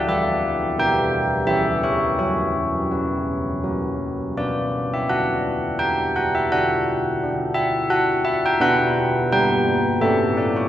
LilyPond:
\new Staff \with { instrumentName = "Church bells" } { \time 3/4 \key b \minor \tempo 4 = 85 << { e''4 g''4 e''8 cis''8 | cis''2 r4 | d''8. e''16 fis''4 g''8 fis''16 e''16 | fis''4. e''8 fis''8 e''16 g''16 |
\key g \lydian fis''4 g''4 e''8 d''16 cis''16 | } \\ { e4 <b g'>4 <e cis' g'>4 | fis4 <cis' b'>4 <fis cis' ais'>4 | b4 d'2 | d'4 d'2 |
<b d' b'>4 <g d' b'>4 <a cis' a'>4 | } >> }